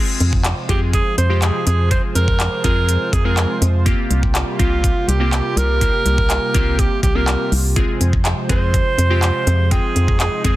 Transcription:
Already playing: C3 F3 G#3 C4 F4 G#4 C5
0.20 F2, closed hi-hat
0.33 kick
0.45 clap, closed hi-hat
0.69 F2 G#3 C4 F4 G4 G#4, kick, closed hi-hat
0.93 G#4, kick, closed hi-hat
1.18 F2 C5, closed hi-hat
1.30 G#3 C4 F4 G4
1.42 G#4, clap, closed hi-hat
1.67 F2 G#4, closed hi-hat
1.90 G#3 C4 F4 G#4 C5, kick, closed hi-hat
2.15 F2 A#4, closed hi-hat
2.28 kick
2.40 clap, closed hi-hat
2.64 F2 G#3 C4 F4 G#4 A#4, kick, closed hi-hat
2.89 closed hi-hat
3.13 F2 G#4, kick, closed hi-hat
3.25 G#3 C4 F4 G#4 A#4
3.37 clap, closed hi-hat
3.62 F2, closed hi-hat
3.86 G3 A#3 C4 F4 G4, kick, closed hi-hat
4.11 C2, closed hi-hat
4.23 kick
4.35 clap, closed hi-hat
4.59 C2 A#3 C4 F4 G4, kick, closed hi-hat
4.84 kick, closed hi-hat
5.08 C2 G4, closed hi-hat
5.20 A#3 C4 F4 G4
5.33 clap, closed hi-hat
5.57 C2 A#4, closed hi-hat
5.81 A#3 C4 F4 G4, kick, closed hi-hat
6.06 C2, closed hi-hat
6.18 kick
6.30 clap, closed hi-hat
6.54 C2 A#3 C4 F4 G4, kick, closed hi-hat
6.79 G4, kick, closed hi-hat
7.03 C2 G4, kick, closed hi-hat
7.15 A#3 C4 F4 G4 A#4
7.28 clap, closed hi-hat
7.52 C2, open hi-hat
7.76 F3 G#3 C4 F4 G#4 C5, kick, closed hi-hat
8.01 F2, closed hi-hat
8.13 kick
8.25 clap, closed hi-hat
8.49 F2 G#3 C4 F4 G#4 C5, kick, closed hi-hat
8.74 kick, closed hi-hat
8.98 F2, closed hi-hat
9.10 G#3 C4 F4 G4
9.22 clap, closed hi-hat
9.47 F2, closed hi-hat
9.71 G#3 C4 D#4 F4 G#4 G5, kick, closed hi-hat
9.96 F2, closed hi-hat
10.08 kick
10.20 G#4, clap, closed hi-hat
10.44 F2 G#3 C4 F4 G#4, kick, closed hi-hat

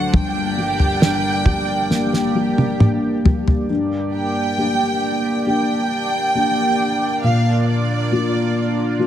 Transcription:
Already playing: D3 F#3 D4 C5 F#5
0.13 G1 G2 A#3 G4 D5 G5, kick, floor tom
0.58 G3
0.80 floor tom
1.02 D4, snare
1.45 G3, kick, floor tom
1.90 A#3 G4, snare
2.13 snare
2.35 G3
2.58 high tom
2.79 A#3, mid tom
3.25 G3, floor tom
3.48 floor tom
3.69 G2 A#3 D4 G4 D5
4.15 G5
4.58 A#3 D4 G4
5.46 A#3 D4 G4 G5
6.35 A#3 D4 G4
7.23 A#2 F4 F5
7.69 D5
8.11 A#3 D4 F4
8.99 A#3 D4 F4

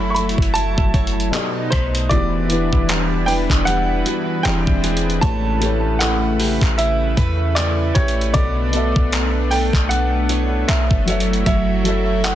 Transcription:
Already playing: F#1 F#3 A3 E4 F#4 A4 C#5 E5 F#5 B5
0.10 C#6
0.15 A4 B5, closed hi-hat, open hi-hat
0.29 closed hi-hat
0.38 F#1, kick
0.42 closed hi-hat
0.54 E4 A5, closed hi-hat
0.78 F#1, kick
0.94 C#5, kick, closed hi-hat
1.07 closed hi-hat
1.20 closed hi-hat
1.31 B2 B3 D#4 G4 A4, clap, closed hi-hat
1.36 D5
1.70 B1 D#4 C5, kick, cross-stick, closed hi-hat, open hi-hat
1.95 closed hi-hat
2.09 E1 E3 B3 D4 E4 F#4 G4 B4 D5, kick, closed hi-hat
2.14 D5
2.48 E3 B3 D4 E4 G4, closed hi-hat
2.53 B4
2.73 E1, kick
2.88 G3, clap, closed hi-hat
3.26 D4 B4 G5, open hi-hat
3.50 E1, kick, clap
3.56 D5
3.65 G3 F#5, closed hi-hat
3.76 E5
4.05 F#4, closed hi-hat
4.43 E1 E3 G#3 C4 D4 G4 G#4 G5, clap, closed hi-hat
4.48 D5
4.67 E1, kick
4.84 G#4, closed hi-hat
4.97 closed hi-hat
5.10 closed hi-hat
5.21 A1 A2 C#3 A3 G4 B4 C#5 A5, kick, closed hi-hat
5.26 C#5
5.60 A2 A3 G4 B4, closed hi-hat
5.65 C#5
5.99 E4 A4 F#5, clap, closed hi-hat
6.40 G4, open hi-hat
6.61 A1, kick, clap
6.78 E4 E5, closed hi-hat
7.17 E2 B4, kick, closed hi-hat
7.55 E4 D5, clap, closed hi-hat
7.95 A1 G4 C#5, kick, closed hi-hat
8.08 closed hi-hat
8.21 closed hi-hat
8.33 B1 B2 B3 D4 A4 C#5 D5, kick, closed hi-hat
8.37 D5
8.72 B2 B3 A4 D5, closed hi-hat
8.76 E5
8.96 B1, kick
9.13 D4, clap, closed hi-hat
9.51 A4 G5, open hi-hat
9.73 B1, kick, clap
9.89 D4 F#5, closed hi-hat
10.29 E4 C#5, closed hi-hat
10.68 B1 D4 E5, clap, closed hi-hat
10.91 F#1, kick
11.05 F#3 E4 F#4 A4 C#5, closed hi-hat
11.10 E5
11.20 closed hi-hat
11.33 closed hi-hat
11.46 F#1 F#3 C#5 E5, kick, closed hi-hat
11.83 F#3 F#4 A4 C#5, closed hi-hat
11.88 E5
12.24 E4 F#5, clap, closed hi-hat

